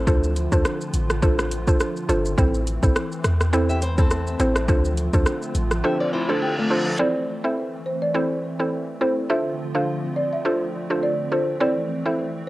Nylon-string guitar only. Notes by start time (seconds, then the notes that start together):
3.69 G4 E5
3.82 E4 C5
3.98 C4 A4
5.84 G4 E5
6.00 F4 D5
6.13 E4 C5
6.29 C4 A4
6.42 G4
6.58 A3 F4